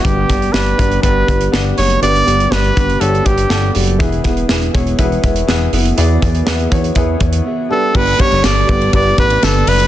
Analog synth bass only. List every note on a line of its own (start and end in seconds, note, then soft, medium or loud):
0.05 0.25 G1 loud
0.30 0.50 G1 medium
0.54 0.74 G1 medium
0.79 0.99 G1 medium
1.03 1.24 G1 loud
1.28 1.49 G1 loud
1.53 1.73 G1 medium
1.78 1.98 F#1 loud
2.02 2.23 G1 loud
2.27 2.47 G1 medium
2.51 2.72 G1 loud
2.77 2.97 G1 medium
3.01 3.21 G1 loud
3.26 3.46 G1 medium
3.51 3.71 G1 medium
3.76 4.02 F#1 medium
4.00 4.20 E1 loud
4.25 4.45 E1 medium
4.50 4.70 E1 loud
4.75 4.94 E1 loud
4.99 5.19 E1 loud
5.24 5.44 E1 medium
5.48 5.68 E1 medium
5.73 5.93 F#1 medium
5.98 6.18 E2 loud
6.23 6.43 E2 medium
6.47 6.67 E2 loud
6.72 6.92 E2 medium
6.96 7.16 E2 loud
7.21 7.41 E2 loud
7.95 8.15 G1 loud
8.32 8.42 G1 medium
8.44 8.64 G1 medium
8.69 8.89 G1 loud
8.93 9.13 G1 loud
9.18 9.38 A1 loud
9.43 9.63 G1 medium
9.67 9.87 F#1 medium